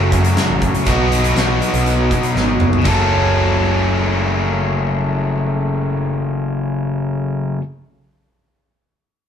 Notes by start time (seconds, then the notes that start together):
Already playing: F#1 F#2 C#3 F#3 A3 C#4 F#4
0.11 F#2 F#3 A3 C#4 F#4, kick, closed hi-hat
0.25 closed hi-hat
0.36 F#3 A3 C#4 F#4, snare, closed hi-hat
0.50 A1
0.60 F#3 A3 C#4 F#4, kick, closed hi-hat
0.75 closed hi-hat
0.85 B1 B2 F#3 B3 D#4 F#4, kick, closed hi-hat
1.09 B3 D#4 F#4, closed hi-hat
1.24 closed hi-hat
1.36 B1 F#3 B3 D#4 F#4, snare, closed hi-hat
1.60 B3 D#4 F#4, closed hi-hat
1.74 B1, closed hi-hat
1.85 B2 F#3 B3 D#4 F#4, closed hi-hat
2.10 B2 B3 D#4 F#4, kick, closed hi-hat
2.23 closed hi-hat
2.35 G#1 F#3 B3 D#4 F#4, snare
2.60 F#1 B3 D#4 F#4, mid tom
2.73 floor tom
2.82 F#1 F#2 C#3, kick, crash
2.87 F#3 A3 A4
2.91 C#4 F#4